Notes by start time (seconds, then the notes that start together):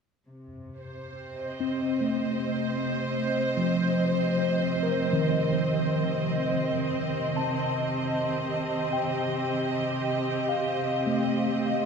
0.27 C3
0.78 C5
1.14 C4
1.36 D#5
1.60 C4
2.01 A3
3.57 F3
4.05 C5
4.83 A#4
5.13 D#3
7.37 A5
7.63 G4
8.93 G5
10.49 F5
11.07 A3